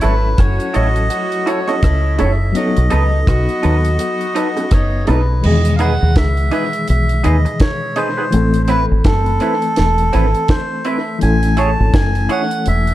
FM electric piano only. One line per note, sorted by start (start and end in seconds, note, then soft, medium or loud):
0.00 2.50 F#3 medium
0.00 2.51 C#4 medium
0.00 2.52 E4 medium
0.00 2.53 A4 medium
2.52 5.38 F#3 medium
2.52 5.40 B3 medium
2.57 5.41 D#4 medium
2.57 5.42 A4 medium
5.41 8.29 B2 medium
5.41 8.27 E3 medium
5.41 8.28 G#3 medium
5.46 8.30 D#3 medium
5.46 8.30 G#4 medium
8.30 11.16 E3 medium
8.30 11.17 A3 medium
8.35 11.19 C4 medium
8.35 11.19 A4 medium
11.19 12.94 E3 medium
11.19 12.94 A3 medium
11.19 12.94 C#4 medium
11.23 12.94 E4 medium
11.23 12.94 A4 medium